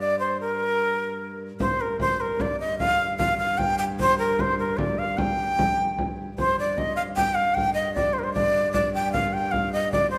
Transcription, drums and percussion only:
0, 0, Header, 1, 2, 480
1, 0, Start_track
1, 0, Key_signature, -2, "minor"
1, 0, Tempo, 397614
1, 479, Time_signature, 3, 2, 24, 8
1, 12292, End_track
2, 0, Start_track
2, 0, Title_t, "Frame drum"
2, 1934, Note_on_c, 9, 64, 91
2, 2055, Note_off_c, 9, 64, 0
2, 2184, Note_on_c, 9, 64, 28
2, 2305, Note_off_c, 9, 64, 0
2, 2409, Note_on_c, 9, 64, 84
2, 2530, Note_off_c, 9, 64, 0
2, 2893, Note_on_c, 9, 64, 83
2, 3014, Note_off_c, 9, 64, 0
2, 3134, Note_on_c, 9, 64, 27
2, 3254, Note_off_c, 9, 64, 0
2, 3380, Note_on_c, 9, 64, 85
2, 3500, Note_off_c, 9, 64, 0
2, 3614, Note_on_c, 9, 64, 27
2, 3734, Note_off_c, 9, 64, 0
2, 3853, Note_on_c, 9, 64, 85
2, 3974, Note_off_c, 9, 64, 0
2, 4337, Note_on_c, 9, 64, 79
2, 4457, Note_off_c, 9, 64, 0
2, 4578, Note_on_c, 9, 64, 25
2, 4699, Note_off_c, 9, 64, 0
2, 4820, Note_on_c, 9, 64, 79
2, 4941, Note_off_c, 9, 64, 0
2, 5057, Note_on_c, 9, 64, 26
2, 5178, Note_off_c, 9, 64, 0
2, 5298, Note_on_c, 9, 64, 78
2, 5419, Note_off_c, 9, 64, 0
2, 5775, Note_on_c, 9, 64, 93
2, 5896, Note_off_c, 9, 64, 0
2, 6020, Note_on_c, 9, 64, 32
2, 6141, Note_off_c, 9, 64, 0
2, 6257, Note_on_c, 9, 64, 99
2, 6378, Note_off_c, 9, 64, 0
2, 6745, Note_on_c, 9, 64, 90
2, 6866, Note_off_c, 9, 64, 0
2, 6985, Note_on_c, 9, 64, 25
2, 7105, Note_off_c, 9, 64, 0
2, 7225, Note_on_c, 9, 64, 79
2, 7345, Note_off_c, 9, 64, 0
2, 7705, Note_on_c, 9, 64, 78
2, 7826, Note_off_c, 9, 64, 0
2, 7954, Note_on_c, 9, 64, 25
2, 8074, Note_off_c, 9, 64, 0
2, 8180, Note_on_c, 9, 64, 76
2, 8301, Note_off_c, 9, 64, 0
2, 8662, Note_on_c, 9, 64, 77
2, 8782, Note_off_c, 9, 64, 0
2, 8911, Note_on_c, 9, 64, 23
2, 9031, Note_off_c, 9, 64, 0
2, 9137, Note_on_c, 9, 64, 75
2, 9258, Note_off_c, 9, 64, 0
2, 9393, Note_on_c, 9, 64, 23
2, 9513, Note_off_c, 9, 64, 0
2, 9615, Note_on_c, 9, 64, 77
2, 9735, Note_off_c, 9, 64, 0
2, 10088, Note_on_c, 9, 64, 78
2, 10209, Note_off_c, 9, 64, 0
2, 10321, Note_on_c, 9, 64, 25
2, 10441, Note_off_c, 9, 64, 0
2, 10553, Note_on_c, 9, 64, 87
2, 10674, Note_off_c, 9, 64, 0
2, 10800, Note_on_c, 9, 64, 27
2, 10921, Note_off_c, 9, 64, 0
2, 11037, Note_on_c, 9, 64, 79
2, 11158, Note_off_c, 9, 64, 0
2, 11513, Note_on_c, 9, 64, 77
2, 11634, Note_off_c, 9, 64, 0
2, 11753, Note_on_c, 9, 64, 25
2, 11874, Note_off_c, 9, 64, 0
2, 11988, Note_on_c, 9, 64, 79
2, 12109, Note_off_c, 9, 64, 0
2, 12226, Note_on_c, 9, 64, 25
2, 12292, Note_off_c, 9, 64, 0
2, 12292, End_track
0, 0, End_of_file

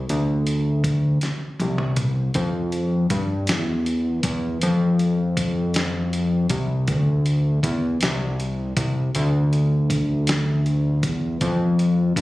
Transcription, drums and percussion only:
0, 0, Header, 1, 2, 480
1, 0, Start_track
1, 0, Key_signature, -1, "minor"
1, 0, Tempo, 754717
1, 56, Time_signature, 6, 3, 24, 8
1, 7766, End_track
2, 0, Start_track
2, 0, Title_t, "Drums"
2, 60, Note_on_c, 9, 42, 65
2, 123, Note_off_c, 9, 42, 0
2, 296, Note_on_c, 9, 42, 50
2, 360, Note_off_c, 9, 42, 0
2, 533, Note_on_c, 9, 36, 86
2, 537, Note_on_c, 9, 42, 78
2, 597, Note_off_c, 9, 36, 0
2, 600, Note_off_c, 9, 42, 0
2, 771, Note_on_c, 9, 42, 74
2, 782, Note_on_c, 9, 38, 59
2, 835, Note_off_c, 9, 42, 0
2, 846, Note_off_c, 9, 38, 0
2, 1015, Note_on_c, 9, 48, 68
2, 1018, Note_on_c, 9, 42, 47
2, 1079, Note_off_c, 9, 48, 0
2, 1082, Note_off_c, 9, 42, 0
2, 1134, Note_on_c, 9, 47, 70
2, 1197, Note_off_c, 9, 47, 0
2, 1249, Note_on_c, 9, 42, 79
2, 1251, Note_on_c, 9, 45, 99
2, 1313, Note_off_c, 9, 42, 0
2, 1315, Note_off_c, 9, 45, 0
2, 1490, Note_on_c, 9, 42, 67
2, 1495, Note_on_c, 9, 36, 108
2, 1554, Note_off_c, 9, 42, 0
2, 1558, Note_off_c, 9, 36, 0
2, 1732, Note_on_c, 9, 42, 51
2, 1795, Note_off_c, 9, 42, 0
2, 1972, Note_on_c, 9, 42, 81
2, 1973, Note_on_c, 9, 36, 92
2, 2036, Note_off_c, 9, 42, 0
2, 2037, Note_off_c, 9, 36, 0
2, 2208, Note_on_c, 9, 42, 80
2, 2221, Note_on_c, 9, 38, 118
2, 2271, Note_off_c, 9, 42, 0
2, 2284, Note_off_c, 9, 38, 0
2, 2457, Note_on_c, 9, 42, 47
2, 2520, Note_off_c, 9, 42, 0
2, 2691, Note_on_c, 9, 42, 85
2, 2693, Note_on_c, 9, 36, 105
2, 2755, Note_off_c, 9, 42, 0
2, 2757, Note_off_c, 9, 36, 0
2, 2935, Note_on_c, 9, 42, 71
2, 2999, Note_off_c, 9, 42, 0
2, 3176, Note_on_c, 9, 42, 50
2, 3240, Note_off_c, 9, 42, 0
2, 3414, Note_on_c, 9, 36, 95
2, 3416, Note_on_c, 9, 42, 84
2, 3478, Note_off_c, 9, 36, 0
2, 3480, Note_off_c, 9, 42, 0
2, 3652, Note_on_c, 9, 42, 76
2, 3665, Note_on_c, 9, 38, 109
2, 3715, Note_off_c, 9, 42, 0
2, 3728, Note_off_c, 9, 38, 0
2, 3899, Note_on_c, 9, 42, 49
2, 3962, Note_off_c, 9, 42, 0
2, 4131, Note_on_c, 9, 42, 90
2, 4134, Note_on_c, 9, 36, 107
2, 4195, Note_off_c, 9, 42, 0
2, 4197, Note_off_c, 9, 36, 0
2, 4373, Note_on_c, 9, 42, 77
2, 4375, Note_on_c, 9, 36, 116
2, 4436, Note_off_c, 9, 42, 0
2, 4439, Note_off_c, 9, 36, 0
2, 4615, Note_on_c, 9, 42, 54
2, 4679, Note_off_c, 9, 42, 0
2, 4854, Note_on_c, 9, 36, 103
2, 4856, Note_on_c, 9, 42, 86
2, 4917, Note_off_c, 9, 36, 0
2, 4920, Note_off_c, 9, 42, 0
2, 5092, Note_on_c, 9, 42, 76
2, 5105, Note_on_c, 9, 38, 111
2, 5155, Note_off_c, 9, 42, 0
2, 5169, Note_off_c, 9, 38, 0
2, 5340, Note_on_c, 9, 42, 51
2, 5404, Note_off_c, 9, 42, 0
2, 5575, Note_on_c, 9, 42, 86
2, 5576, Note_on_c, 9, 36, 108
2, 5639, Note_off_c, 9, 42, 0
2, 5640, Note_off_c, 9, 36, 0
2, 5817, Note_on_c, 9, 42, 74
2, 5881, Note_off_c, 9, 42, 0
2, 6059, Note_on_c, 9, 42, 51
2, 6123, Note_off_c, 9, 42, 0
2, 6296, Note_on_c, 9, 36, 98
2, 6298, Note_on_c, 9, 42, 84
2, 6359, Note_off_c, 9, 36, 0
2, 6362, Note_off_c, 9, 42, 0
2, 6533, Note_on_c, 9, 42, 77
2, 6546, Note_on_c, 9, 38, 119
2, 6596, Note_off_c, 9, 42, 0
2, 6609, Note_off_c, 9, 38, 0
2, 6780, Note_on_c, 9, 42, 45
2, 6843, Note_off_c, 9, 42, 0
2, 7015, Note_on_c, 9, 42, 89
2, 7016, Note_on_c, 9, 36, 107
2, 7079, Note_off_c, 9, 42, 0
2, 7080, Note_off_c, 9, 36, 0
2, 7256, Note_on_c, 9, 42, 67
2, 7258, Note_on_c, 9, 36, 114
2, 7320, Note_off_c, 9, 42, 0
2, 7322, Note_off_c, 9, 36, 0
2, 7499, Note_on_c, 9, 42, 52
2, 7563, Note_off_c, 9, 42, 0
2, 7735, Note_on_c, 9, 36, 94
2, 7739, Note_on_c, 9, 42, 90
2, 7766, Note_off_c, 9, 36, 0
2, 7766, Note_off_c, 9, 42, 0
2, 7766, End_track
0, 0, End_of_file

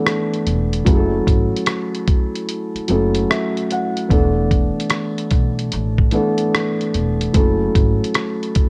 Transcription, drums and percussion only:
0, 0, Header, 1, 2, 480
1, 0, Start_track
1, 0, Key_signature, 3, "minor"
1, 0, Tempo, 810811
1, 511, Time_signature, 4, 2, 24, 8
1, 5144, End_track
2, 0, Start_track
2, 0, Title_t, "Drums"
2, 38, Note_on_c, 9, 37, 104
2, 45, Note_on_c, 9, 42, 65
2, 97, Note_off_c, 9, 37, 0
2, 104, Note_off_c, 9, 42, 0
2, 198, Note_on_c, 9, 42, 33
2, 257, Note_off_c, 9, 42, 0
2, 276, Note_on_c, 9, 42, 58
2, 335, Note_off_c, 9, 42, 0
2, 433, Note_on_c, 9, 42, 46
2, 492, Note_off_c, 9, 42, 0
2, 512, Note_on_c, 9, 36, 115
2, 513, Note_on_c, 9, 42, 91
2, 571, Note_off_c, 9, 36, 0
2, 572, Note_off_c, 9, 42, 0
2, 753, Note_on_c, 9, 36, 86
2, 756, Note_on_c, 9, 42, 61
2, 812, Note_off_c, 9, 36, 0
2, 815, Note_off_c, 9, 42, 0
2, 927, Note_on_c, 9, 42, 48
2, 985, Note_off_c, 9, 42, 0
2, 985, Note_on_c, 9, 42, 78
2, 990, Note_on_c, 9, 37, 122
2, 1044, Note_off_c, 9, 42, 0
2, 1049, Note_off_c, 9, 37, 0
2, 1153, Note_on_c, 9, 42, 34
2, 1212, Note_off_c, 9, 42, 0
2, 1229, Note_on_c, 9, 36, 97
2, 1229, Note_on_c, 9, 42, 67
2, 1288, Note_off_c, 9, 42, 0
2, 1289, Note_off_c, 9, 36, 0
2, 1394, Note_on_c, 9, 42, 42
2, 1453, Note_off_c, 9, 42, 0
2, 1472, Note_on_c, 9, 42, 84
2, 1531, Note_off_c, 9, 42, 0
2, 1633, Note_on_c, 9, 42, 34
2, 1692, Note_off_c, 9, 42, 0
2, 1706, Note_on_c, 9, 42, 65
2, 1765, Note_off_c, 9, 42, 0
2, 1863, Note_on_c, 9, 42, 45
2, 1922, Note_off_c, 9, 42, 0
2, 1959, Note_on_c, 9, 37, 115
2, 1966, Note_on_c, 9, 42, 65
2, 2018, Note_off_c, 9, 37, 0
2, 2025, Note_off_c, 9, 42, 0
2, 2115, Note_on_c, 9, 42, 32
2, 2174, Note_off_c, 9, 42, 0
2, 2195, Note_on_c, 9, 42, 54
2, 2254, Note_off_c, 9, 42, 0
2, 2350, Note_on_c, 9, 42, 49
2, 2409, Note_off_c, 9, 42, 0
2, 2430, Note_on_c, 9, 36, 108
2, 2433, Note_on_c, 9, 42, 84
2, 2489, Note_off_c, 9, 36, 0
2, 2492, Note_off_c, 9, 42, 0
2, 2670, Note_on_c, 9, 36, 84
2, 2672, Note_on_c, 9, 42, 59
2, 2729, Note_off_c, 9, 36, 0
2, 2731, Note_off_c, 9, 42, 0
2, 2841, Note_on_c, 9, 42, 45
2, 2899, Note_off_c, 9, 42, 0
2, 2899, Note_on_c, 9, 42, 85
2, 2904, Note_on_c, 9, 37, 117
2, 2959, Note_off_c, 9, 42, 0
2, 2963, Note_off_c, 9, 37, 0
2, 3067, Note_on_c, 9, 42, 35
2, 3126, Note_off_c, 9, 42, 0
2, 3141, Note_on_c, 9, 42, 67
2, 3146, Note_on_c, 9, 36, 95
2, 3200, Note_off_c, 9, 42, 0
2, 3205, Note_off_c, 9, 36, 0
2, 3308, Note_on_c, 9, 42, 41
2, 3368, Note_off_c, 9, 42, 0
2, 3386, Note_on_c, 9, 42, 82
2, 3445, Note_off_c, 9, 42, 0
2, 3542, Note_on_c, 9, 36, 81
2, 3602, Note_off_c, 9, 36, 0
2, 3619, Note_on_c, 9, 42, 64
2, 3678, Note_off_c, 9, 42, 0
2, 3776, Note_on_c, 9, 42, 45
2, 3835, Note_off_c, 9, 42, 0
2, 3875, Note_on_c, 9, 37, 111
2, 3882, Note_on_c, 9, 42, 66
2, 3934, Note_off_c, 9, 37, 0
2, 3941, Note_off_c, 9, 42, 0
2, 4031, Note_on_c, 9, 42, 35
2, 4090, Note_off_c, 9, 42, 0
2, 4111, Note_on_c, 9, 42, 55
2, 4170, Note_off_c, 9, 42, 0
2, 4268, Note_on_c, 9, 42, 47
2, 4328, Note_off_c, 9, 42, 0
2, 4347, Note_on_c, 9, 42, 89
2, 4348, Note_on_c, 9, 36, 106
2, 4406, Note_off_c, 9, 42, 0
2, 4407, Note_off_c, 9, 36, 0
2, 4589, Note_on_c, 9, 36, 85
2, 4591, Note_on_c, 9, 42, 60
2, 4649, Note_off_c, 9, 36, 0
2, 4650, Note_off_c, 9, 42, 0
2, 4760, Note_on_c, 9, 42, 47
2, 4819, Note_off_c, 9, 42, 0
2, 4821, Note_on_c, 9, 42, 82
2, 4826, Note_on_c, 9, 37, 123
2, 4880, Note_off_c, 9, 42, 0
2, 4885, Note_off_c, 9, 37, 0
2, 4989, Note_on_c, 9, 42, 34
2, 5048, Note_off_c, 9, 42, 0
2, 5062, Note_on_c, 9, 42, 69
2, 5067, Note_on_c, 9, 36, 96
2, 5121, Note_off_c, 9, 42, 0
2, 5126, Note_off_c, 9, 36, 0
2, 5144, End_track
0, 0, End_of_file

